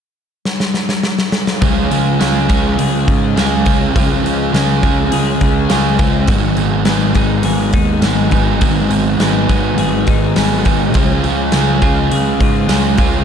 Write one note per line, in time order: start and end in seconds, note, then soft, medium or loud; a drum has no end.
0.45 snare medium
0.60 snare medium
0.74 snare medium
0.89 snare medium
1.03 snare medium
1.18 snare medium
1.32 snare loud
1.47 snare loud
1.61 1.91 C#2 medium
1.61 3.94 C#3 medium
1.61 2.19 C#3 medium
1.61 3.08 F3 medium
1.61 2.19 G#3 medium
1.61 2.20 G#3 loud
1.61 1.93 C#4 medium
1.61 2.20 C#4 loud
1.61 1.91 F4 medium
1.61 1.90 G#4 medium
1.61 kick loud
1.61 open hi-hat medium
1.91 2.20 C#2 medium
1.91 2.20 C#4 soft
1.91 2.21 F4 medium
1.91 2.22 G#4 medium
1.91 open hi-hat soft
2.19 2.49 C#2 medium
2.19 2.76 C#3 medium
2.19 3.36 G#3 medium
2.19 2.50 G#3 medium
2.19 2.51 C#4 medium
2.19 2.48 C#4 medium
2.19 2.50 F4 medium
2.19 2.48 G#4 medium
2.19 snare medium
2.19 open hi-hat medium
2.48 2.78 C#2 medium
2.48 2.78 G#3 medium
2.48 2.78 C#4 medium
2.48 3.36 C#4 medium
2.48 3.37 F4 medium
2.48 3.39 G#4 medium
2.48 kick medium
2.48 open hi-hat soft
2.77 3.07 C#2 medium
2.77 3.34 C#3 medium
2.77 3.08 G#3 medium
2.77 3.06 C#4 medium
2.77 5.12 G#4 medium
2.77 open hi-hat medium
3.07 3.36 G#2 medium
3.07 3.36 G#3 medium
3.07 3.36 C#4 medium
3.07 kick medium
3.07 open hi-hat soft
3.35 3.66 C#2 medium
3.35 3.93 C#3 medium
3.35 3.95 G#3 medium
3.35 3.96 C#4 medium
3.35 3.67 C#4 medium
3.35 3.65 F4 medium
3.35 3.65 G#4 medium
3.35 snare loud
3.35 open hi-hat medium
3.65 3.95 C#2 medium
3.65 3.95 C#4 medium
3.65 3.96 F4 medium
3.65 3.97 G#4 medium
3.65 kick medium
3.65 open hi-hat medium
3.94 4.22 C#2 medium
3.94 4.54 C#3 medium
3.94 4.51 C#3 loud
3.94 5.42 F3 medium
3.94 4.52 G#3 loud
3.94 4.53 G#3 medium
3.94 4.25 C#4 loud
3.94 4.53 C#4 loud
3.94 4.25 F4 loud
3.94 4.23 G#4 medium
3.94 kick medium
3.94 open hi-hat medium
4.23 4.52 C#2 medium
4.23 4.53 C#4 medium
4.23 4.54 F4 medium
4.23 4.56 G#4 medium
4.23 open hi-hat soft
4.52 4.82 C#2 medium
4.52 5.10 C#3 medium
4.52 5.68 G#3 medium
4.52 4.84 G#3 medium
4.52 4.84 C#4 medium
4.52 4.81 C#4 medium
4.52 4.83 F4 medium
4.52 4.83 G#4 medium
4.52 snare medium
4.52 open hi-hat medium
4.82 5.12 C#2 medium
4.82 5.13 G#3 medium
4.82 5.12 C#4 medium
4.82 5.68 C#4 medium
4.82 5.70 F4 medium
4.82 5.71 G#4 medium
4.82 kick medium
4.82 open hi-hat soft
5.11 5.41 C#2 medium
5.11 5.68 C#3 medium
5.11 5.42 G#3 medium
5.11 5.39 C#4 medium
5.11 6.33 G#4 medium
5.11 open hi-hat medium
5.40 5.70 C#2 medium
5.40 5.70 G#3 medium
5.40 5.71 C#4 medium
5.40 kick medium
5.40 open hi-hat soft
5.69 5.98 C#2 medium
5.69 6.27 C#3 medium
5.69 6.29 G#3 medium
5.69 6.28 G#3 medium
5.69 6.01 C#4 medium
5.69 6.28 C#4 medium
5.69 6.00 F4 medium
5.69 5.99 G#4 medium
5.69 snare loud
5.69 open hi-hat medium
5.99 6.27 C#2 medium
5.99 6.30 C4 medium
5.99 6.29 C#4 medium
5.99 6.28 F4 medium
5.99 6.31 G#4 medium
5.99 kick medium
5.99 open hi-hat soft
6.27 6.56 G#1 medium
6.27 6.85 G#2 loud
6.27 8.60 G#2 medium
6.27 6.86 D#3 loud
6.27 6.88 D#3 loud
6.27 7.76 F#3 medium
6.27 6.87 G#3 loud
6.27 6.59 G#3 medium
6.27 6.58 B3 medium
6.27 6.57 D#4 medium
6.27 kick loud
6.27 open hi-hat medium
6.31 6.57 G#4 medium
6.57 6.85 G#1 medium
6.57 6.86 G#3 medium
6.57 6.87 B3 medium
6.57 6.89 D#4 medium
6.57 6.89 G#4 medium
6.57 open hi-hat soft
6.85 7.15 G#1 medium
6.85 7.43 G#2 medium
6.85 7.16 D#3 medium
6.85 7.18 G#3 medium
6.85 7.14 G#3 medium
6.85 7.17 B3 medium
6.85 7.17 D#4 medium
6.85 snare loud
6.85 open hi-hat medium
6.90 7.15 G#4 medium
7.15 7.44 G#1 medium
7.15 7.44 D#3 medium
7.15 7.45 G#3 medium
7.15 8.01 G#3 medium
7.15 8.02 B3 medium
7.15 8.02 D#4 medium
7.15 8.04 G#4 medium
7.15 kick medium
7.15 open hi-hat soft
7.43 7.73 G#1 medium
7.43 8.02 G#2 medium
7.43 7.75 D#3 medium
7.43 7.74 G#3 medium
7.43 9.79 G#4 medium
7.43 open hi-hat medium
7.73 8.01 D#2 medium
7.73 8.04 G#3 medium
7.73 8.31 D#4 medium
7.73 kick medium
7.73 open hi-hat soft
7.77 8.02 D#3 medium
8.02 8.31 G#1 medium
8.02 8.60 G#2 medium
8.02 8.61 D#3 medium
8.02 8.34 G#3 medium
8.02 8.62 G#3 medium
8.02 8.33 B3 medium
8.02 8.32 D#4 medium
8.02 8.32 G#4 medium
8.02 snare loud
8.02 open hi-hat medium
8.31 8.61 G#1 medium
8.31 8.61 G#3 medium
8.31 8.61 B3 medium
8.31 8.62 D#4 medium
8.31 8.63 G#4 medium
8.31 kick medium
8.31 open hi-hat medium
8.60 8.89 G#1 medium
8.60 9.20 G#2 loud
8.60 9.19 G#2 loud
8.60 9.20 D#3 medium
8.60 9.20 D#3 loud
8.60 10.08 F#3 medium
8.60 8.92 G#3 loud
8.60 9.22 G#3 loud
8.60 8.90 B3 medium
8.60 8.89 D#4 loud
8.60 8.88 G#4 medium
8.60 kick loud
8.60 open hi-hat medium
8.89 9.17 G#1 medium
8.89 9.20 G#3 medium
8.89 9.20 B3 medium
8.89 9.21 D#4 medium
8.89 9.22 G#4 medium
8.89 open hi-hat soft
9.18 9.48 G#1 medium
9.18 9.77 G#2 medium
9.18 9.51 D#3 medium
9.18 9.50 G#3 medium
9.18 9.49 G#3 medium
9.18 9.49 B3 medium
9.18 9.48 D#4 medium
9.18 snare loud
9.18 open hi-hat medium
9.22 9.48 G#4 medium
9.48 9.77 G#1 medium
9.48 9.78 D#3 medium
9.48 9.80 G#3 medium
9.48 10.36 G#3 medium
9.48 10.36 B3 medium
9.48 10.37 D#4 medium
9.48 10.39 G#4 medium
9.48 kick medium
9.48 open hi-hat soft
9.78 10.07 G#1 medium
9.78 10.34 G#2 medium
9.78 10.07 D#3 medium
9.78 10.06 G#3 medium
9.78 12.11 G#4 medium
9.78 open hi-hat medium
10.06 10.36 G#1 medium
10.06 10.36 D#3 medium
10.06 10.38 G#3 medium
10.06 10.65 D#4 medium
10.06 kick medium
10.06 open hi-hat soft
10.36 10.65 G#1 medium
10.36 10.93 G#2 medium
10.36 10.93 D#3 medium
10.36 10.68 G#3 medium
10.36 10.94 G#3 medium
10.36 10.66 B3 medium
10.36 10.65 D#4 medium
10.36 10.65 G#4 medium
10.36 snare loud
10.36 open hi-hat medium
10.65 10.95 G#1 medium
10.65 10.95 G#3 medium
10.65 10.94 B3 medium
10.65 10.94 D#4 medium
10.65 10.97 G#4 medium
10.65 kick medium
10.65 open hi-hat soft
10.93 11.24 C#2 medium
10.93 11.52 C#3 medium
10.93 13.24 C#3 medium
10.93 12.41 F3 medium
10.93 11.53 G#3 loud
10.93 11.53 G#3 medium
10.93 11.54 C#4 loud
10.93 11.27 C#4 loud
10.93 11.26 F4 medium
10.93 kick loud
10.93 open hi-hat medium
10.97 11.24 G#4 medium
11.24 11.53 C#2 medium
11.24 11.54 C#4 medium
11.24 11.55 F4 medium
11.24 11.56 G#4 medium
11.24 open hi-hat soft
11.52 11.82 C#2 medium
11.52 12.09 C#3 medium
11.52 12.68 G#3 medium
11.52 11.83 G#3 medium
11.52 11.84 C#4 medium
11.52 11.81 C#4 medium
11.52 11.83 F4 medium
11.52 snare medium
11.52 open hi-hat medium
11.56 11.81 G#4 medium
11.81 12.11 C#2 medium
11.81 12.10 G#3 medium
11.81 12.10 C#4 medium
11.81 12.68 C#4 medium
11.81 12.69 F4 medium
11.81 12.71 G#4 medium
11.81 kick medium
11.81 open hi-hat soft
12.10 12.40 C#2 medium
12.10 12.65 C#3 medium
12.10 12.40 G#3 medium
12.10 12.37 C#4 medium
12.10 13.24 G#4 medium
12.10 open hi-hat medium
12.38 12.68 G#2 medium
12.38 12.68 G#3 medium
12.38 12.68 C#4 medium
12.38 12.99 F4 medium
12.38 kick medium
12.38 open hi-hat soft
12.67 12.98 C#2 medium
12.67 13.24 C#3 medium
12.67 13.24 G#3 medium
12.67 13.24 C#4 medium
12.67 13.00 C#4 medium
12.67 12.99 F4 medium
12.67 snare loud
12.67 open hi-hat medium
12.71 12.98 G#4 medium
12.98 13.24 C#2 medium
12.98 13.24 C#4 medium
12.98 13.24 F4 medium
12.98 13.24 G#4 medium
12.98 kick medium
12.98 open hi-hat medium